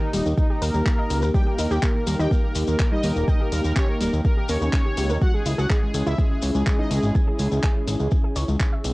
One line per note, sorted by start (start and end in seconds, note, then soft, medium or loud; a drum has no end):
0.00 0.11 D#3 medium
0.00 5.17 A#3 medium
0.00 5.18 D#4 medium
0.00 0.11 D#4 medium
0.00 5.17 G4 loud
0.13 0.22 D#1 medium
0.13 0.23 D#3 medium
0.13 0.23 G3 medium
0.13 0.23 D#4 medium
0.13 0.23 G4 medium
0.13 open hi-hat loud
0.13 maracas loud
0.26 0.34 D#2 medium
0.26 maracas medium
0.38 0.47 D#3 medium
0.38 0.47 D#4 medium
0.38 kick loud
0.38 maracas soft
0.50 0.59 D#3 medium
0.50 0.59 D#4 medium
0.50 0.55 G4 medium
0.50 0.55 G5 medium
0.62 0.70 D#2 loud
0.62 1.25 A#3 loud
0.62 0.71 A#4 medium
0.62 1.25 A#4 loud
0.62 0.71 A#5 medium
0.62 open hi-hat loud
0.62 maracas medium
0.74 0.82 D#2 medium
0.74 0.85 G3 medium
0.74 0.85 G4 medium
0.74 maracas soft
0.86 kick loud
0.86 clap loud
0.86 maracas soft
0.98 1.07 D#5 medium
0.98 1.07 D#6 medium
1.10 1.24 C#2 loud
1.10 open hi-hat loud
1.10 maracas medium
1.22 1.31 D#2 medium
1.22 1.28 A#4 medium
1.22 1.28 A#5 medium
1.22 maracas medium
1.34 1.44 G3 medium
1.34 1.44 G4 medium
1.34 1.44 G4 loud
1.34 1.44 G5 loud
1.34 kick loud
1.34 maracas soft
1.47 1.56 A#3 medium
1.47 1.56 G4 medium
1.47 1.56 A#4 medium
1.47 1.56 G5 medium
1.58 1.67 D#2 medium
1.58 1.68 A#3 medium
1.58 1.68 D#4 medium
1.58 1.68 A#4 medium
1.58 1.68 D#5 medium
1.58 open hi-hat loud
1.58 maracas loud
1.71 1.79 D#2 medium
1.71 1.76 G4 loud
1.71 1.80 G4 loud
1.71 1.76 G5 medium
1.71 1.80 G5 medium
1.71 maracas medium
1.83 1.92 A#3 medium
1.83 1.95 G4 loud
1.83 1.92 A#4 medium
1.83 kick loud
1.83 clap loud
1.83 maracas soft
1.95 2.04 A#3 medium
1.95 2.04 A#4 medium
2.07 2.16 D#2 medium
2.07 2.16 G3 medium
2.07 2.17 A#3 medium
2.07 2.16 G4 medium
2.07 2.17 A#4 medium
2.07 open hi-hat loud
2.07 maracas loud
2.19 2.28 D#2 medium
2.19 2.28 D#4 loud
2.19 2.28 G4 medium
2.19 2.28 D#5 medium
2.19 2.28 G5 loud
2.19 maracas medium
2.31 2.41 A#3 medium
2.31 2.41 A#4 medium
2.31 kick loud
2.31 maracas soft
2.44 2.53 A#3 medium
2.44 2.53 A#4 medium
2.55 2.64 D#2 loud
2.55 open hi-hat loud
2.55 maracas loud
2.67 2.76 D#2 medium
2.67 2.77 A#3 medium
2.67 2.77 A#4 medium
2.67 maracas medium
2.80 2.89 A#3 medium
2.80 2.89 A#4 medium
2.80 kick loud
2.80 clap loud
2.80 maracas soft
2.92 3.03 G3 loud
2.92 3.01 D#4 loud
2.92 3.03 G4 medium
2.92 3.01 D#5 loud
3.03 3.12 D#2 loud
3.03 3.13 G3 medium
3.03 3.13 A#3 medium
3.03 3.13 G4 medium
3.03 3.13 A#4 medium
3.03 open hi-hat loud
3.03 maracas medium
3.16 3.24 D#1 medium
3.16 3.25 A#3 medium
3.16 3.25 A#4 medium
3.16 maracas medium
3.28 3.38 D#4 medium
3.28 3.38 D#5 loud
3.28 3.38 G5 medium
3.28 3.38 G6 medium
3.28 kick loud
3.28 maracas soft
3.40 3.50 A#3 medium
3.40 3.46 G4 medium
3.40 3.50 A#4 medium
3.40 3.46 G5 medium
3.52 3.61 D#2 medium
3.52 3.62 G3 medium
3.52 3.62 A#3 medium
3.52 3.62 G4 medium
3.52 3.62 A#4 medium
3.52 open hi-hat loud
3.52 maracas medium
3.64 3.73 D#2 medium
3.64 3.74 A#3 medium
3.64 3.74 A#4 medium
3.64 maracas medium
3.76 3.86 C#4 medium
3.76 3.86 G4 loud
3.76 3.86 C#5 loud
3.76 3.86 G5 medium
3.76 kick loud
3.76 clap loud
3.76 maracas soft
3.89 3.98 A#3 medium
3.89 3.98 A#4 medium
4.00 4.09 D#1 medium
4.00 4.10 G3 medium
4.00 4.10 A#3 medium
4.00 4.10 G4 medium
4.00 4.10 A#4 medium
4.00 open hi-hat loud
4.00 maracas medium
4.13 4.21 D#2 medium
4.13 maracas medium
4.25 4.34 A#3 medium
4.25 4.34 A#4 medium
4.25 kick loud
4.25 maracas soft
4.37 4.46 A#3 medium
4.37 4.43 G4 medium
4.37 4.46 A#4 medium
4.37 4.43 G5 medium
4.49 4.58 D#2 loud
4.49 4.60 A#3 medium
4.49 5.12 C#4 loud
4.49 4.60 A#4 medium
4.49 5.12 C#5 loud
4.49 open hi-hat loud
4.49 maracas loud
4.61 4.70 D#2 medium
4.61 4.70 A#3 loud
4.61 4.70 A#4 medium
4.61 maracas medium
4.73 kick loud
4.73 clap loud
4.73 maracas soft
4.86 4.96 G4 medium
4.86 4.96 G5 medium
4.97 5.11 C#2 loud
4.97 5.09 G4 medium
4.97 5.09 G5 medium
4.97 open hi-hat loud
4.97 maracas medium
5.09 5.18 D#2 medium
5.09 5.19 A#4 medium
5.09 5.19 A#5 medium
5.09 maracas medium
5.21 5.31 G#3 medium
5.21 8.93 C#4 medium
5.21 8.93 E4 medium
5.21 5.31 F#4 loud
5.21 8.93 G#4 medium
5.21 5.31 G#4 medium
5.21 5.31 F#5 loud
5.21 kick loud
5.21 maracas soft
5.34 5.43 G#3 medium
5.34 5.43 G#4 medium
5.34 5.43 G#5 medium
5.46 5.54 C#2 medium
5.46 5.55 G#3 medium
5.46 5.55 E4 medium
5.46 5.55 G#4 medium
5.46 5.55 E5 medium
5.46 open hi-hat loud
5.46 maracas medium
5.58 5.66 C#2 medium
5.58 5.67 F#4 medium
5.58 5.63 G#4 loud
5.58 5.67 F#5 medium
5.58 5.64 G#5 medium
5.58 maracas medium
5.70 5.79 G#3 medium
5.70 5.82 G#4 loud
5.70 5.79 G#4 medium
5.70 5.82 G#5 medium
5.70 kick loud
5.70 clap loud
5.70 maracas soft
5.82 5.91 G#3 medium
5.82 5.91 G#4 medium
5.94 6.03 C#2 medium
5.94 6.04 G#3 medium
5.94 6.04 G#4 medium
5.94 open hi-hat loud
5.94 maracas loud
6.06 6.15 C#2 medium
6.06 6.15 E4 loud
6.06 6.15 E5 medium
6.06 6.16 E5 medium
6.06 maracas medium
6.18 6.28 G#3 medium
6.18 6.28 G#4 medium
6.18 kick loud
6.18 maracas soft
6.31 6.40 G#3 medium
6.31 6.40 G#4 medium
6.42 6.51 C#2 loud
6.42 open hi-hat loud
6.42 maracas medium
6.55 6.63 C#2 medium
6.55 6.64 G#3 medium
6.55 6.64 G#4 medium
6.55 maracas soft
6.66 6.76 G#3 medium
6.66 6.76 G#4 medium
6.66 kick loud
6.66 clap loud
6.66 maracas soft
6.79 6.90 G#3 loud
6.79 6.88 D#4 loud
6.79 6.90 G#4 medium
6.79 6.88 D#5 loud
6.91 6.99 C#2 loud
6.91 7.00 G#3 medium
6.91 7.00 G#4 medium
6.91 open hi-hat loud
6.91 maracas medium
7.02 7.11 G#1 medium
7.02 7.12 G#3 medium
7.02 7.12 G#4 medium
7.02 maracas medium
7.15 7.24 G#5 medium
7.15 7.24 G#6 medium
7.15 kick loud
7.15 maracas soft
7.27 7.33 G#4 medium
7.27 7.33 G#5 medium
7.39 7.48 C#2 loud
7.39 7.49 G#3 medium
7.39 7.49 G#4 medium
7.39 open hi-hat loud
7.39 maracas medium
7.51 7.60 C#2 medium
7.51 maracas soft
7.62 7.73 G#4 loud
7.62 7.73 G#5 medium
7.62 kick loud
7.62 clap loud
7.62 maracas soft
7.88 7.96 G#1 medium
7.88 7.97 G#3 medium
7.88 7.97 G#4 medium
7.88 open hi-hat loud
7.88 maracas medium
8.00 8.08 C#2 medium
8.00 maracas soft
8.11 kick loud
8.11 maracas soft
8.24 8.30 G#4 medium
8.24 8.30 G#5 medium
8.36 8.45 C#2 medium
8.36 8.46 C#5 medium
8.36 8.46 C#6 medium
8.36 open hi-hat loud
8.36 maracas medium
8.48 8.57 C#2 medium
8.48 8.60 G#3 medium
8.48 8.60 G#4 medium
8.48 maracas medium
8.60 kick loud
8.60 clap loud
8.60 maracas soft
8.73 8.82 E5 medium
8.73 8.82 E6 medium
8.84 8.93 B1 loud
8.84 open hi-hat loud
8.84 maracas loud